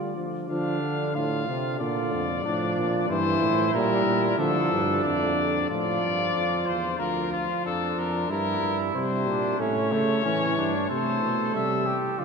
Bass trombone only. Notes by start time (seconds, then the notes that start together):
Already playing: D3
0.50 D3
1.47 C3
1.81 A#2
2.13 F2
2.45 A2
2.77 A#2
3.10 G2
3.42 A2
3.74 A#2
4.06 A#2
4.38 D3
4.72 G2
5.05 F2
5.70 A2
6.02 G2
6.35 F2
6.68 E2
7.00 D2
7.65 F2
7.97 F2
8.29 G2
8.62 G2
8.94 C3
9.27 A#2
9.59 A2
9.92 C#3
10.25 A2
10.57 G2
10.90 C3
11.22 B2
11.55 C3
12.19 D3